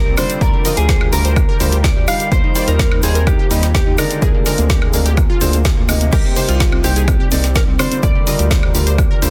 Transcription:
Already playing: analog synth pad C3 G3 A#3 D#4 D5, clean electric guitar A#4
0.06 analog synth bass C2, synth pluck C4
0.17 grand piano D3 G3 F4 D5, synth pluck C4, clean electric guitar C5, open hi-hat, high woodblock, shaker
0.30 synth pluck C4, closed hi-hat, shaker
0.41 analog synth bass D2, analog synth pad D3 F4 A#4 G5, clean electric guitar A#4, synth pluck D5, kick, closed hi-hat, shaker
0.54 synth pluck G4
0.65 grand piano D3 F3 F4 A#4, synth pluck D#5, open hi-hat, shaker
0.77 analog synth bass D2, synth pluck G4, clean electric guitar G#4, closed hi-hat, shaker
0.89 synth pluck C5, kick, snare, closed hi-hat, shaker
1.01 synth pluck G4, high woodblock
1.13 analog synth bass D2, grand piano D3 G3 F4 A#4, synth pluck G4, clean electric guitar A#4, open hi-hat, shaker
1.25 synth pluck C5, closed hi-hat, shaker
1.36 synth pluck G4, kick, closed hi-hat, high woodblock, shaker
1.49 synth pluck A#4
1.60 analog synth bass D2, grand piano D3 G3 F4 C5, synth pluck G4, open hi-hat, shaker
1.72 synth pluck G4, closed hi-hat, shaker
1.84 clean electric guitar D5, kick, snare, closed hi-hat, shaker
1.96 analog synth bass D2, synth pluck G4
2.08 grand piano G3 D#4 F5, synth pluck G4, clean electric guitar F5, open hi-hat, high woodblock, shaker
2.20 synth pluck G4, closed hi-hat, shaker
2.32 analog synth bass D#2, analog synth pad D#3 A#3 C4 F4, synth pluck C5, clean electric guitar C5, kick, closed hi-hat, shaker
2.44 synth pluck D#4
2.55 grand piano G3 D#4 C5, synth pluck D5, open hi-hat, shaker
2.68 analog synth bass D#2, synth pluck D#4, clean electric guitar A#4, closed hi-hat, shaker
2.79 synth pluck A#4, kick, snare, closed hi-hat, shaker
2.91 synth pluck D#4, high woodblock
3.03 analog synth bass D#2, grand piano G3 D#4 C5, synth pluck D#4, clean electric guitar G#4, open hi-hat, shaker
3.15 synth pluck A#4, closed hi-hat, shaker
3.27 synth pluck D#4, clean electric guitar G4, kick, closed hi-hat, high woodblock, shaker
3.39 synth pluck G4
3.51 analog synth bass D#2, grand piano G3 D#4 D#5, synth pluck D#4, open hi-hat, shaker
3.63 synth pluck D#4, snare, closed hi-hat, shaker
3.74 clean electric guitar G4, kick, snare, closed hi-hat, shaker
3.87 analog synth bass D#2, synth pluck D#4
3.98 grand piano D3 G#3 D4 D5, synth pluck D#4, clean electric guitar A#4, open hi-hat, high woodblock, shaker
4.11 synth pluck D#4, closed hi-hat, shaker
4.22 analog synth bass D2, analog synth pad D3 A#3 G#4, synth pluck G#4, kick, closed hi-hat, shaker
4.34 synth pluck A#3
4.46 grand piano D3 G#3 D4 A#4, synth pluck A#4, snare, open hi-hat, shaker
4.58 analog synth bass D2, synth pluck A#3, closed hi-hat, shaker
4.70 synth pluck G4, kick, snare, closed hi-hat, shaker
4.82 synth pluck A#3, high woodblock
4.93 analog synth bass D2, grand piano D3 G#3 D4 A#4, synth pluck A#3, open hi-hat, shaker
5.06 synth pluck G4, closed hi-hat, shaker
5.17 synth pluck A#3, kick, closed hi-hat, high woodblock, shaker
5.30 synth pluck F4
5.41 analog synth bass D2, grand piano D3 G#3 D4 C5, synth pluck A#3, open hi-hat, shaker
5.53 synth pluck A#3, closed hi-hat, shaker
5.64 kick, snare, closed hi-hat, shaker
5.77 analog synth bass D2, synth pluck A#3
5.89 grand piano C3 A#3 D#4 D#5, synth pluck A#3, open hi-hat, high woodblock, shaker
6.01 synth pluck A#3, closed hi-hat, shaker
6.12 analog synth bass C2, analog synth pad C3 G3 D#4 D5, clean electric guitar G4, synth pluck A#4, kick, closed hi-hat, crash, shaker
6.25 synth pluck C4
6.36 grand piano C3 A#3 D#4 C5, synth pluck C5, open hi-hat, shaker
6.49 analog synth bass C2, synth pluck C4, clean electric guitar F4, closed hi-hat, shaker
6.60 synth pluck G4, kick, snare, closed hi-hat, shaker
6.72 synth pluck C4, high woodblock
6.84 analog synth bass C2, grand piano C3 A#3 D#4 C5, synth pluck C4, clean electric guitar G4, open hi-hat, shaker
6.96 synth pluck G#4, closed hi-hat, shaker
7.08 synth pluck C4, kick, closed hi-hat, high woodblock, shaker
7.20 synth pluck G4
7.31 analog synth bass C2, grand piano C3 A#3 D#4 D5, synth pluck C4, open hi-hat, shaker
7.44 synth pluck C4, snare, closed hi-hat, shaker
7.55 clean electric guitar A#4, kick, snare, closed hi-hat, shaker
7.68 analog synth bass C2, synth pluck C4
7.79 grand piano D3 G3 F4 D5, synth pluck C4, clean electric guitar C5, open hi-hat, high woodblock, shaker
7.92 synth pluck C4, closed hi-hat, shaker
8.03 analog synth bass D2, analog synth pad D3 F4 G4 A#4, synth pluck D5, clean electric guitar D5, kick, closed hi-hat, shaker
8.15 synth pluck G4
8.27 grand piano D3 G3 F4 A#4, synth pluck D#5, open hi-hat, shaker
8.39 analog synth bass D2, synth pluck G4, closed hi-hat, shaker
8.51 synth pluck C5, kick, snare, closed hi-hat, shaker
8.63 synth pluck G4, high woodblock
8.75 analog synth bass D2, grand piano D3 G3 F4 A#4, synth pluck G4, open hi-hat, shaker
8.87 synth pluck C5, closed hi-hat, shaker
8.98 synth pluck G4, kick, closed hi-hat, high woodblock, shaker
9.11 synth pluck A#4
9.22 analog synth bass D2, grand piano D3 G3 F4 C5, synth pluck G4, open hi-hat, shaker

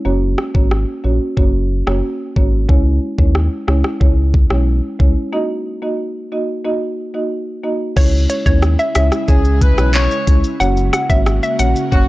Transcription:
0.05 analog synth bass F#1, marimba A#3 C#4 F#4 C#5
0.38 cross-stick
0.54 analog synth bass G#1, marimba A#3 C#4 F#4 C#5, kick
0.71 cross-stick
1.04 analog synth bass A#1, marimba A#3 C#4 F#4 C#5
1.37 analog synth bass F#1, marimba A#3 C#4 F#4 C#5, kick
1.87 analog synth bass F#1, marimba A#3 C#4 F#4 C#5, cross-stick
2.36 analog synth bass G#1, marimba A#3 C#4 F#4 C#5, kick
2.69 analog synth bass C#2, marimba G#3 C#4 E4 C#5, kick
3.18 analog synth bass D#2, marimba G#3 C#4 E4 C#5, kick
3.35 cross-stick
3.68 analog synth bass C#2, marimba G#3 C#4 E4 C#5, cross-stick
3.84 cross-stick
4.01 analog synth bass C#2, marimba G#3 C#4 E4 C#5, kick
4.34 kick
4.50 analog synth bass B1, marimba G#3 C#4 E4 C#5, cross-stick
5.00 analog synth bass C#2, marimba G#3 C#4 E4 C#5, kick
5.33 marimba A#3 D#4 F#4 D#5
5.82 marimba A#3 D#4 F#4 D#5
6.32 marimba A#3 D#4 F#4 D#5
6.65 marimba A#3 D#4 F#4 D#5
7.14 marimba A#3 D#4 F#4 D#5
7.64 marimba A#3 D#4 F#4 D#5
7.96 analog synth bass C#2, ambient pad C#3 G#3 E4, marimba G#3 C#4 E4 C#5, synth pluck C#5, kick, crash, shaker
8.13 shaker
8.30 synth pluck C#5, closed hi-hat, shaker
8.46 analog synth bass D#2, marimba G#3 C#4 E4 C#5, synth pluck C#5, kick, shaker
8.62 cross-stick, shaker
8.79 synth pluck E5, shaker
8.95 analog synth bass C#2, marimba G#3 C#4 E4 C#5, synth pluck E5, cross-stick, closed hi-hat, shaker
9.12 cross-stick, shaker
9.28 analog synth bass C#2, marimba G#3 C#4 E4 C#5, horn section G#4, kick, shaker
9.45 shaker
9.61 horn section B4, kick, closed hi-hat, shaker
9.78 analog synth bass B1, marimba G#3 C#4 E4 C#5, cross-stick, shaker
9.94 horn section C#5, clap, shaker
10.11 shaker
10.27 analog synth bass C#2, marimba G#3 C#4 E4 C#5, kick, closed hi-hat, shaker
10.44 shaker
10.60 analog synth bass F#1, marimba A#3 C#4 F#4 C#5, ambient pad A#3 F#4, synth pluck F#5, shaker
10.77 shaker
10.93 synth pluck F#5, cross-stick, closed hi-hat, shaker
11.09 analog synth bass G#1, marimba A#3 C#4 F#4 C#5, synth pluck E5, kick, shaker
11.26 cross-stick, shaker
11.43 synth pluck E5, shaker
11.59 analog synth bass A#1, marimba A#3 C#4 F#4 C#5, synth pluck F#5, closed hi-hat, shaker
11.76 shaker
11.92 analog synth bass F#1, marimba A#3 C#4 F#4 C#5, horn section F#4, kick, shaker

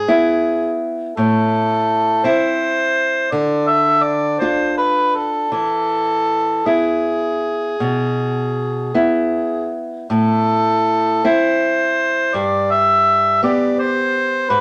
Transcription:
Already playing: harmonica G#4
0.08 nylon-string guitar B3 E4
1.17 nylon-string guitar A2, harmonica A4
2.24 nylon-string guitar C4 E4, harmonica C5
3.31 nylon-string guitar D3, harmonica D5
3.67 harmonica E5
4.03 harmonica D5
4.39 nylon-string guitar D4 F4, harmonica C5
4.77 harmonica B4
5.15 harmonica A4
5.52 nylon-string guitar E3, harmonica A4
6.65 nylon-string guitar B3 E4, harmonica G#4
7.80 nylon-string guitar B2
8.94 nylon-string guitar B3 E4
10.10 nylon-string guitar A2, harmonica A4
11.24 nylon-string guitar C4 E4, harmonica C5
12.34 nylon-string guitar G2, harmonica D5
12.71 harmonica E5
13.43 nylon-string guitar B3 G4, harmonica D5
13.79 harmonica C5
14.50 nylon-string guitar G#2, harmonica B4

